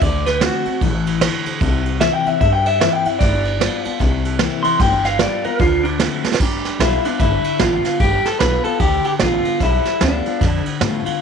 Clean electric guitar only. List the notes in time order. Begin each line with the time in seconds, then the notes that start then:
0.03 D5
0.26 B4
0.41 F#4
2.00 E5
2.13 G5
2.28 E5
2.41 E5
2.53 G5
2.67 E5
2.80 E5
2.93 G5
3.06 E5
3.19 D5
4.63 C6
4.81 G5
5.05 F5
5.21 D5
5.45 A#4
5.60 F4
5.83 D4
6.43 D4
6.81 E4
7.05 D4
7.20 E4
7.61 F4
8.00 G4
8.26 A4
8.39 B4
8.64 A4
8.80 G4
9.06 G4
9.21 F4
9.63 E4
10.02 D4